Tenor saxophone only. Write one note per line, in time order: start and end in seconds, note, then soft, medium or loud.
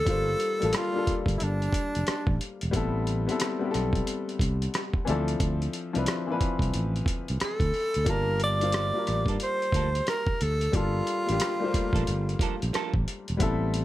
0.00 0.78 A4 loud
0.77 1.17 F4 medium
1.37 1.45 E4 medium
1.43 2.42 D4 medium
7.44 8.12 A4 medium
8.10 8.42 A#4 loud
8.43 9.38 D5 loud
9.43 10.04 C5 medium
10.09 10.44 A#4 medium
10.43 10.77 A4 medium
10.76 12.74 F4 medium